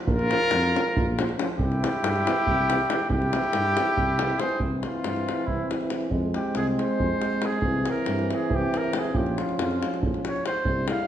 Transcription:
0.06 0.31 A#1 loud
0.06 1.34 F4 loud
0.06 1.34 A#4 loud
0.06 davul low loud
0.19 davul high soft
0.30 0.39 F3 medium
0.30 0.39 C#4 medium
0.30 davul high medium
0.51 0.76 F2 loud
0.51 davul high medium
0.64 davul high soft
0.73 0.83 F3 medium
0.73 0.82 C#4 medium
0.73 davul high medium
0.97 1.31 A#1 medium
0.97 davul low loud
1.15 1.27 F3 medium
1.15 1.24 C#4 medium
1.15 davul high medium
1.29 davul high soft
1.38 1.48 F3 medium
1.38 1.46 C#4 medium
1.38 davul high medium
1.58 1.83 C2 loud
1.58 3.07 E4 loud
1.58 3.05 G4 loud
1.58 davul low medium
1.72 davul high soft
1.81 1.90 E3 medium
1.81 1.90 C4 medium
1.81 davul high medium
2.03 2.27 G2 medium
2.03 davul high medium
2.16 davul high soft
2.26 2.35 E3 medium
2.26 2.35 C4 medium
2.26 davul high medium
2.47 2.81 C2 medium
2.47 davul low medium
2.70 2.78 E3 medium
2.70 2.78 C4 medium
2.70 davul high medium
2.81 davul high soft
2.90 2.99 E3 medium
2.90 2.98 C4 medium
2.90 davul high medium
3.09 3.33 C2 medium
3.09 4.41 G4 loud
3.09 davul low medium
3.14 4.43 E4 medium
3.22 davul high soft
3.33 3.43 E3 medium
3.33 3.42 C4 medium
3.33 davul high medium
3.43 davul high soft
3.53 3.78 G2 medium
3.53 davul high medium
3.65 davul high soft
3.77 3.87 E3 medium
3.77 3.86 C4 medium
3.77 davul high medium
3.97 4.32 C2 medium
3.97 davul low medium
4.19 4.29 E3 medium
4.19 4.29 C4 medium
4.19 davul high medium
4.30 davul high soft
4.40 4.49 E3 medium
4.40 4.49 C4 medium
4.40 4.61 G#4 medium
4.40 4.60 C5 medium
4.40 davul high medium
4.49 davul high soft
4.60 4.85 C2 medium
4.60 6.13 E3 medium
4.60 6.07 C4 medium
4.60 davul low medium
4.83 5.48 F4 medium
4.83 davul high medium
5.04 5.30 G2 medium
5.04 davul high medium
5.16 davul high soft
5.29 davul high medium
5.46 5.61 C2 medium
5.46 5.70 E4 medium
5.46 davul low medium
5.71 davul high medium
5.81 davul high soft
5.90 davul high medium
6.01 davul high soft
6.10 6.35 F2 medium
6.10 7.62 G#3 medium
6.10 7.59 C4 medium
6.10 davul low medium
6.34 6.54 G4 medium
6.34 davul high medium
6.55 6.80 C2 medium
6.55 6.67 G#4 medium
6.55 davul high medium
6.67 davul high soft
6.79 7.47 C5 medium
6.79 davul high soft
6.99 7.12 F2 loud
6.99 davul low medium
7.22 davul high medium
7.33 davul high soft
7.42 7.88 G#4 loud
7.42 davul high medium
7.53 davul high soft
7.61 7.86 C2 medium
7.61 9.16 E3 medium
7.61 9.15 C4 medium
7.61 davul low medium
7.86 davul high medium
7.90 8.29 A#4 medium
8.06 8.31 G2 medium
8.06 davul high medium
8.19 davul high soft
8.30 davul high medium
8.35 8.56 G#4 medium
8.50 8.63 C2 loud
8.50 davul low medium
8.55 8.79 G4 medium
8.74 8.95 A#4 medium
8.74 davul high medium
8.84 davul high soft
8.93 davul high medium
8.98 9.17 G#4 medium
9.04 davul high soft
9.13 9.37 A#1 medium
9.13 10.48 F3 medium
9.13 10.48 C#4 medium
9.13 9.40 G4 medium
9.13 davul low medium
9.26 davul high soft
9.38 9.56 F4 medium
9.38 davul high medium
9.49 davul high soft
9.57 9.83 F2 medium
9.57 9.98 F4 medium
9.57 davul high medium
9.71 davul high soft
9.83 davul high medium
9.94 davul high soft
10.01 10.14 A#1 medium
10.01 davul low medium
10.14 davul high soft
10.25 10.44 C#5 medium
10.25 davul high medium
10.36 davul high soft
10.46 10.86 C5 medium
10.46 davul high medium
10.63 10.89 C2 medium
10.63 11.07 G3 medium
10.63 11.07 E4 medium
10.63 davul low medium
10.88 11.07 F5 medium
10.88 davul high medium

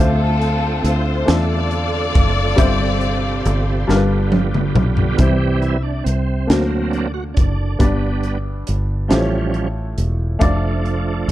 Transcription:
0.00 0.80 D2 loud
0.00 1.23 D3 medium
0.00 2.56 D3 medium
0.00 1.00 A3 medium
0.00 2.54 A3 medium
0.00 1.24 C4 medium
0.00 3.85 C4 medium
0.00 1.01 D4 medium
0.00 1.01 F4 medium
0.00 1.24 F4 medium
0.00 2.57 F4 medium
0.00 2.54 A4 medium
0.00 0.86 A4 loud
0.00 1.02 C5 medium
0.41 closed hi-hat medium
0.84 1.24 D2 medium
0.84 closed hi-hat medium
0.89 1.30 C5 medium
1.25 2.11 E2 medium
1.25 2.31 A3 medium
1.25 2.31 D4 medium
1.25 2.32 F4 medium
1.25 2.32 A4 medium
1.25 snare loud
1.25 closed hi-hat medium
1.30 4.29 F4 medium
1.30 4.29 A4 medium
1.30 4.34 D5 loud
1.71 closed hi-hat soft
2.15 2.55 F#1 medium
2.15 kick loud
2.15 closed hi-hat medium
2.56 3.41 G1 medium
2.56 3.84 G2 medium
2.56 3.87 C3 medium
2.56 3.61 G3 medium
2.56 5.16 G3 medium
2.56 3.62 C4 medium
2.56 5.17 G4 medium
2.56 3.87 C5 medium
2.56 3.62 C5 loud
2.56 3.62 E5 medium
2.56 kick loud
2.56 closed hi-hat loud
3.01 closed hi-hat medium
3.45 3.85 G1 medium
3.45 closed hi-hat medium
3.87 4.72 G1 medium
3.87 5.15 G2 medium
3.87 5.18 D3 medium
3.87 4.92 G3 medium
3.87 5.18 B3 medium
3.87 4.92 D4 medium
3.87 4.93 F4 medium
3.87 5.18 F4 medium
3.87 3.96 A#4 medium
3.87 snare medium
3.96 4.96 B4 medium
4.32 high tom medium
4.54 mid tom medium
4.75 5.15 B1 medium
4.75 mid tom loud
4.97 floor tom medium
5.17 6.02 C2 medium
5.17 6.45 C3 soft
5.17 5.77 E3 soft
5.17 6.22 G3 medium
5.17 5.77 G3 soft
5.17 6.23 C4 medium
5.17 5.78 C4 soft
5.17 6.23 E4 medium
5.17 5.60 G4 medium
5.17 6.24 C5 medium
5.17 kick loud
5.17 closed hi-hat medium
5.62 5.82 E4 medium
5.62 closed hi-hat soft
5.83 6.04 D4 medium
6.04 6.46 C2 medium
6.04 6.49 C4 medium
6.04 closed hi-hat medium
6.47 7.33 D2 medium
6.47 7.76 D3 soft
6.47 7.08 F#3 medium
6.47 7.53 A#3 medium
6.47 7.08 A#3 soft
6.47 7.08 C4 medium
6.47 7.53 D4 soft
6.47 7.54 F#4 soft
6.47 7.54 C5 medium
6.47 snare loud
6.47 closed hi-hat medium
6.90 7.12 D4 medium
6.90 closed hi-hat soft
7.14 7.24 F#4 medium
7.34 7.77 F#1 medium
7.34 7.80 D4 medium
7.34 kick medium
7.34 closed hi-hat medium
7.79 8.63 G1 medium
7.79 9.07 G2 medium
7.79 8.38 G3 soft
7.79 8.84 B3 medium
7.79 8.38 B3 soft
7.79 8.84 D4 medium
7.79 8.39 D4 soft
7.79 8.85 G4 medium
7.79 8.85 D5 medium
7.79 kick loud
7.79 closed hi-hat medium
8.23 closed hi-hat soft
8.67 9.08 G1 medium
8.67 closed hi-hat medium
9.08 9.94 A1 medium
9.08 10.37 A2 medium
9.08 9.68 F3 soft
9.08 9.68 G3 soft
9.08 10.14 A3 medium
9.08 9.68 C#4 medium
9.08 10.15 F4 medium
9.08 10.15 G4 medium
9.08 9.18 C5 medium
9.08 snare loud
9.08 closed hi-hat medium
9.18 10.19 C#5 medium
9.54 closed hi-hat soft
9.98 10.38 E1 medium
9.98 closed hi-hat medium
10.39 11.25 F1 loud
10.39 11.32 F3 soft
10.39 11.32 A3 medium
10.39 11.32 A3 soft
10.39 11.32 D4 medium
10.39 11.32 F4 medium
10.39 11.32 D5 medium
10.39 kick loud
10.39 closed hi-hat medium
10.86 closed hi-hat soft
11.28 11.32 F1 medium

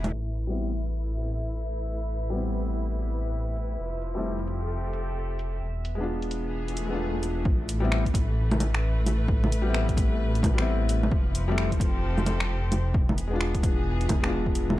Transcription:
0.00 0.11 E1 medium
0.00 0.12 E3 medium
0.00 0.13 B3 medium
0.00 4.53 E4 medium
0.00 0.12 G#4 medium
0.04 closed hi-hat soft
0.04 low bongo medium
0.11 3.77 A1 medium
0.11 3.79 A3 medium
0.11 7.46 E5 medium
0.29 4.43 B4 medium
0.36 closed hi-hat medium
0.36 cabasa medium
0.47 0.67 G3 medium
0.47 0.68 B3 medium
0.47 0.69 C4 medium
0.52 0.70 E4 medium
0.73 closed hi-hat soft
0.82 closed hi-hat soft
1.19 cabasa soft
1.28 closed hi-hat soft
1.28 cabasa medium
1.73 closed hi-hat soft
2.19 closed hi-hat medium
2.30 3.77 G3 medium
2.30 3.78 B3 medium
2.35 3.79 C4 medium
2.35 3.81 E4 medium
2.56 closed hi-hat soft
2.65 closed hi-hat soft
2.65 cabasa medium
3.02 closed hi-hat soft
3.11 closed hi-hat soft
3.11 cabasa medium
3.56 closed hi-hat soft
3.56 cabasa medium
3.79 5.61 F1 medium
3.79 5.62 F3 medium
4.02 closed hi-hat soft
4.02 cabasa medium
4.15 4.34 G3 medium
4.15 4.35 A3 medium
4.15 4.36 C4 medium
4.19 5.63 C4 medium
4.19 4.37 E4 loud
4.39 closed hi-hat soft
4.44 5.62 G4 medium
4.44 closed hi-hat soft
4.44 cabasa medium
4.62 5.62 A4 medium
4.85 cabasa soft
4.93 closed hi-hat medium
4.93 cabasa medium
5.39 closed hi-hat soft
5.39 cabasa medium
5.62 7.44 E1 medium
5.81 7.45 B3 medium
5.81 closed hi-hat soft
5.81 cabasa medium
5.95 6.85 G#3 medium
5.95 6.87 B3 medium
6.00 6.89 D4 medium
6.00 6.90 F4 medium
6.22 closed hi-hat soft
6.31 11.87 E3 medium
6.31 closed hi-hat soft
6.31 cabasa medium
6.47 7.46 G#4 medium
6.54 swell medium
6.68 closed hi-hat soft
6.77 closed hi-hat soft
6.77 cabasa medium
6.87 7.42 G#3 medium
6.87 7.44 B3 medium
6.92 7.45 D4 medium
6.92 7.46 F4 loud
7.23 closed hi-hat soft
7.23 cabasa medium
7.45 11.10 A1 medium
7.45 11.13 A3 medium
7.45 kick loud
7.69 closed hi-hat medium
7.69 cabasa medium
7.80 8.00 G3 loud
7.80 8.01 B3 medium
7.80 8.02 C4 medium
7.85 8.02 E4 loud
7.92 finger snap loud
8.03 11.87 B4 medium
8.03 kick medium
8.03 closed hi-hat soft
8.14 kick loud
8.14 closed hi-hat medium
8.14 cabasa medium
8.52 low bongo medium
8.52 cabasa soft
8.60 closed hi-hat medium
8.60 low bongo medium
8.60 cabasa medium
8.74 finger snap loud
9.06 closed hi-hat medium
9.06 low bongo medium
9.06 cabasa medium
9.28 kick loud
9.44 low bongo medium
9.52 closed hi-hat medium
9.52 cabasa medium
9.62 10.52 G3 medium
9.62 10.54 B3 medium
9.67 10.56 C4 medium
9.67 10.57 E4 loud
9.74 finger snap loud
9.88 kick medium
9.88 closed hi-hat soft
9.97 kick loud
9.97 closed hi-hat medium
9.97 cabasa medium
10.35 closed hi-hat soft
10.43 kick loud
10.43 closed hi-hat medium
10.43 low bongo medium
10.43 cabasa medium
10.54 11.09 G3 medium
10.54 11.10 B3 medium
10.58 11.12 C4 medium
10.58 11.13 E4 loud
10.58 finger snap loud
10.89 closed hi-hat medium
10.89 cabasa medium
11.03 low bongo medium
11.12 12.93 F1 medium
11.12 12.95 F3 loud
11.12 kick loud
11.35 closed hi-hat medium
11.35 cabasa medium
11.47 11.67 G3 loud
11.47 11.68 A3 medium
11.47 11.69 C4 medium
11.47 12.96 C4 medium
11.47 12.96 A4 medium
11.52 11.69 E4 loud
11.58 finger snap loud
11.71 kick medium
11.71 closed hi-hat soft
11.80 kick loud
11.80 closed hi-hat medium
11.80 cabasa medium
11.88 12.96 G4 medium
12.18 low bongo medium
12.18 cabasa soft
12.26 closed hi-hat medium
12.26 low bongo medium
12.26 cabasa medium
12.40 finger snap loud
12.72 closed hi-hat medium
12.72 low bongo soft
12.72 cabasa medium
12.94 14.76 E1 medium
12.94 kick loud
13.06 14.78 B3 medium
13.06 low bongo medium
13.17 14.79 G#4 medium
13.17 closed hi-hat medium
13.17 cabasa medium
13.28 14.19 G#3 medium
13.28 14.20 B3 medium
13.33 14.22 D4 medium
13.33 14.23 F4 loud
13.41 finger snap loud
13.55 14.79 E3 medium
13.55 kick medium
13.55 closed hi-hat soft
13.63 kick loud
13.63 closed hi-hat medium
13.63 cabasa medium
14.01 closed hi-hat soft
14.09 kick loud
14.09 closed hi-hat medium
14.09 low bongo medium
14.09 cabasa medium
14.20 14.75 G#3 loud
14.20 14.77 B3 medium
14.20 finger snap loud
14.25 14.78 D4 medium
14.25 14.79 F4 loud
14.46 kick medium
14.55 closed hi-hat medium
14.55 cabasa medium
14.70 low bongo medium

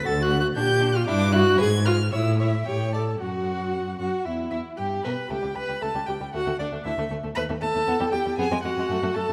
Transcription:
0.05 0.51 D2 medium
0.05 0.13 F#4 medium
0.05 0.23 A4 loud
0.05 0.24 A6 loud
0.22 0.40 F#4 medium
0.22 0.40 F#6 loud
0.31 0.39 F#4 medium
0.40 0.47 F#4 medium
0.40 0.47 F#6 loud
0.56 1.02 A#2 medium
0.56 0.64 D4 medium
0.56 0.97 G4 loud
0.56 0.97 G6 loud
0.81 0.89 D4 medium
0.95 1.08 F4 loud
0.95 1.06 F6 loud
1.07 1.54 G2 loud
1.07 1.34 D4 loud
1.07 1.16 E4 medium
1.07 1.34 D6 loud
1.33 1.41 E4 medium
1.33 1.60 F#4 loud
1.33 1.59 F#6 loud
1.58 2.07 G#2 loud
1.58 1.69 G#4 loud
1.58 1.66 B4 medium
1.58 1.87 G#6 loud
1.85 1.94 F4 loud
1.85 1.93 B4 medium
1.85 2.12 F6 loud
2.12 2.61 A2 loud
2.12 2.40 E4 medium
2.12 2.20 C#5 medium
2.12 2.39 E6 medium
2.39 2.66 E4 medium
2.39 2.48 C#5 medium
2.39 2.67 E5 medium
2.66 3.15 A2 medium
2.66 2.76 G4 medium
2.66 2.92 C#5 medium
2.66 2.95 G5 medium
2.93 3.21 A4 medium
2.93 3.02 D5 medium
2.93 3.20 A5 medium
3.20 3.95 F#2 medium
3.20 3.95 F#4 medium
3.20 3.98 F#4 medium
3.20 3.98 F#5 medium
3.99 4.07 F#2 medium
3.99 4.27 F#4 medium
3.99 4.25 F#5 medium
4.25 4.51 E2 medium
4.25 4.51 E4 medium
4.25 4.33 E5 medium
4.51 4.60 E2 medium
4.51 4.78 E4 medium
4.51 4.60 E4 medium
4.51 4.59 E5 medium
4.77 5.04 G2 medium
4.77 5.03 G4 medium
4.77 5.06 G4 medium
4.77 4.85 G5 medium
5.03 5.13 B2 medium
5.03 5.12 B4 medium
5.03 5.30 B4 medium
5.03 5.32 B5 medium
5.30 5.36 C#2 medium
5.30 5.35 A3 medium
5.30 5.56 G4 medium
5.30 5.57 G5 medium
5.42 5.49 C#2 soft
5.42 5.48 G3 soft
5.55 5.62 C#2 soft
5.55 5.61 G3 soft
5.55 5.81 B4 medium
5.55 5.84 B5 medium
5.69 5.75 C#2 soft
5.69 5.74 G3 soft
5.81 5.88 C#2 medium
5.81 5.87 A3 medium
5.81 5.90 A4 medium
5.81 6.08 A5 loud
5.95 6.01 C#2 medium
5.95 6.00 G3 medium
6.07 6.14 C#2 medium
6.07 6.13 G3 medium
6.07 6.16 G4 medium
6.07 6.33 G5 medium
6.20 6.26 C#2 medium
6.20 6.26 G3 medium
6.33 6.39 D2 medium
6.33 6.38 A3 medium
6.33 6.59 F#4 medium
6.33 6.59 F#5 loud
6.47 6.52 D2 medium
6.47 6.52 A3 medium
6.59 6.65 D2 medium
6.59 6.65 A3 medium
6.59 6.85 D4 medium
6.59 6.67 D5 medium
6.72 6.78 D2 medium
6.72 6.77 A3 medium
6.85 6.90 D2 medium
6.85 6.91 A3 medium
6.85 6.94 E4 medium
6.85 7.10 E5 medium
6.98 7.03 D2 medium
6.98 7.03 A3 medium
7.11 7.16 D2 medium
7.11 7.16 A3 medium
7.24 7.29 D2 medium
7.24 7.29 A3 medium
7.35 7.41 D#2 medium
7.35 7.42 A3 medium
7.35 7.44 B4 medium
7.35 7.43 B5 loud
7.49 7.55 D#2 medium
7.49 7.54 A3 medium
7.61 7.68 D#2 medium
7.61 7.67 A3 medium
7.61 8.14 A4 loud
7.61 8.11 A5 loud
7.75 7.80 D#2 medium
7.75 7.80 A3 medium
7.87 7.93 E2 medium
7.87 7.92 B3 medium
8.00 8.06 E2 medium
8.00 8.05 G3 medium
8.12 8.18 E2 medium
8.12 8.17 G3 medium
8.12 8.38 G4 medium
8.12 8.37 G5 loud
8.25 8.31 E2 medium
8.25 8.30 G3 medium
8.38 8.43 F2 loud
8.38 8.43 B3 medium
8.38 8.46 G#4 loud
8.38 8.63 G#5 loud
8.51 8.56 F2 medium
8.51 8.56 G#3 medium
8.63 8.69 F2 medium
8.63 8.70 G#3 medium
8.63 9.17 F#4 medium
8.63 9.16 F#5 loud
8.77 8.82 F2 medium
8.77 8.83 G#3 medium
8.89 8.94 F#2 medium
8.89 8.96 A3 medium
9.02 9.08 F#2 medium
9.02 9.08 A3 medium
9.14 9.21 F#2 medium
9.14 9.21 A3 medium
9.14 9.33 A4 loud
9.14 9.33 A5 loud
9.28 9.33 F#2 medium
9.28 9.33 A3 medium

